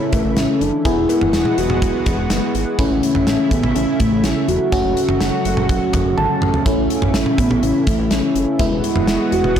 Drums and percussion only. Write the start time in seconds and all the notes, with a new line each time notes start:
0.12 kick, closed hi-hat, cowbell
0.36 snare, closed hi-hat
0.61 closed hi-hat
0.85 kick, closed hi-hat
1.09 closed hi-hat, cowbell
1.21 mid tom
1.33 snare, closed hi-hat
1.45 mid tom
1.58 closed hi-hat
1.70 mid tom
1.82 kick, closed hi-hat
2.06 kick, closed hi-hat
2.30 snare, closed hi-hat
2.55 closed hi-hat
2.79 kick, closed hi-hat
3.03 closed hi-hat
3.15 mid tom
3.27 snare, closed hi-hat
3.51 kick, closed hi-hat
3.63 mid tom
3.76 closed hi-hat
4.00 kick, closed hi-hat
4.24 snare, closed hi-hat
4.48 closed hi-hat
4.72 kick, closed hi-hat
4.97 closed hi-hat
5.09 mid tom
5.21 snare, closed hi-hat
5.45 closed hi-hat
5.57 mid tom
5.69 kick, closed hi-hat
5.93 kick, closed hi-hat, mid tom
6.18 high tom
6.42 mid tom
6.54 floor tom
6.66 kick, closed hi-hat
6.90 closed hi-hat
7.02 mid tom
7.14 snare, closed hi-hat
7.26 mid tom
7.38 kick, closed hi-hat
7.51 mid tom
7.63 closed hi-hat
7.87 kick, closed hi-hat
8.11 snare, closed hi-hat
8.36 closed hi-hat
8.59 kick, closed hi-hat
8.84 closed hi-hat
8.96 mid tom
9.07 snare, closed hi-hat
9.32 closed hi-hat
9.44 mid tom
9.56 kick, closed hi-hat